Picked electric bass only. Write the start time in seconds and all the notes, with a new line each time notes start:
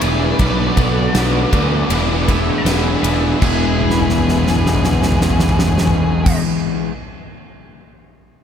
0.02 E1
0.39 B1
0.77 B1
1.15 B1
1.52 D2
1.90 E1
2.65 E1
3.03 E1
3.42 E1